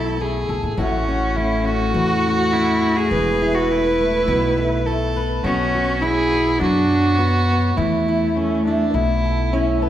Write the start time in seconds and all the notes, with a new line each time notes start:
Already playing: B1 B2 E3 A3 E4 A4
0.20 A3 G#4
0.49 B1 A4
0.63 A1
0.71 G#4
0.77 A1 A2 A3 C#4 F#4 C#5
1.08 C#4
1.36 A3 E4
1.65 C#4 F#4
1.94 E2 E3 F#4
2.26 C#4
2.37 F#4
2.53 C#4 E4
2.84 C#4
2.97 G#4
3.11 E1 E3 B4
3.41 E4
3.55 F#4
3.71 A3 E4
4.01 A3
4.28 B1 B2
4.58 A3
4.86 A3 A4
5.16 B4
5.44 B1 B2 B3 C#4 F#4 C#5
5.75 F#4
6.01 B3 E4 G#4
6.33 B3
6.59 F#2 F#3 D4 F#4
6.91 C#5
7.18 B3 F#4
7.50 C#5
7.76 E2 E3 A3 E4
8.08 E4
8.36 A3 C#4
8.65 D4 E4
8.94 B1 B2 E4
9.25 A4
9.52 C#4 E4
9.82 B3 A4